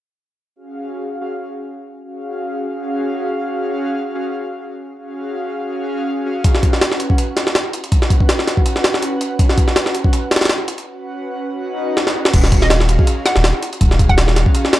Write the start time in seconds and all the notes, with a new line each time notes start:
0.56 C#4 F#4 G#4 F5
1.21 C#4 F#4 G#4 F5
2.03 C#4 F#4 G#4 F5
2.68 C#4 F#4 G#4 F5
3.50 C#4 F#4 G#4 F5
4.15 C#4 F#4 G#4 F5
4.97 C#4 F#4 G#4 F5
5.63 C#4 F#4 G#4 F5
6.26 C#4 F#4 G#4 F5
6.44 C#4 F#4 B4 F#5, kick, closed hi-hat
6.55 snare
6.63 kick, closed hi-hat
6.73 snare
6.81 snare, closed hi-hat
6.92 snare
7.00 closed hi-hat
7.10 C#4 F#4 B4 F#5, kick
7.18 closed hi-hat
7.37 snare, closed hi-hat
7.47 snare
7.55 snare, closed hi-hat
7.73 closed hi-hat
7.84 closed hi-hat
7.92 C#4 F#4 B4 F#5, kick, closed hi-hat
8.02 snare
8.10 kick, closed hi-hat
8.20 kick
8.29 snare, closed hi-hat
8.39 snare
8.47 snare, closed hi-hat
8.57 C#4 F#4 B4 F#5, kick
8.66 closed hi-hat
8.76 snare
8.84 snare, closed hi-hat
8.94 snare
9.02 closed hi-hat
9.21 closed hi-hat
9.39 C#4 F#4 B4 F#5, kick, closed hi-hat
9.49 snare
9.58 kick, closed hi-hat
9.68 snare
9.76 snare, closed hi-hat
9.86 snare
9.95 closed hi-hat
10.04 C#4 F#4 B4 F#5, kick
10.13 closed hi-hat
10.31 snare, closed hi-hat
10.36 snare, closed hi-hat
10.41 snare, closed hi-hat
10.45 snare, closed hi-hat
10.49 snare, closed hi-hat
10.68 closed hi-hat
10.78 closed hi-hat
10.87 C#4 F#4 B4 F#5
11.52 C#4 F#4 B4 F#5
11.60 swell
11.97 snare
12.07 snare
12.16 C#4 F#4 B4 F#5
12.25 snare
12.34 D#1 C#4 F#4 G#4 F5, kick, closed hi-hat, crash
12.44 snare
12.52 kick, closed hi-hat
12.62 D#5, snare
12.70 snare, closed hi-hat
12.80 snare
12.89 closed hi-hat
12.99 C#4 F#4 G#4 F5, kick
13.07 closed hi-hat
13.26 F#5, snare, closed hi-hat
13.36 D#1, snare
13.44 snare, closed hi-hat
13.63 closed hi-hat
13.73 closed hi-hat
13.81 D#1 C#4 F#4 G#4 F5, kick, closed hi-hat
13.91 snare
13.99 kick, closed hi-hat
14.09 F#5, kick
14.18 snare, closed hi-hat
14.28 snare
14.36 snare, closed hi-hat
14.46 C#4 F#4 G#4 F5, kick
14.55 closed hi-hat
14.65 snare
14.73 snare, closed hi-hat